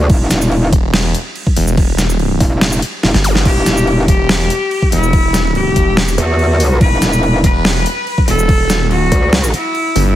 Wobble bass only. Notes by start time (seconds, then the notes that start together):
0.10 E1
0.31 E1
2.40 E1
3.03 E1
3.45 E1
3.66 E1
6.18 E2
6.81 E1
7.02 E1
9.12 D2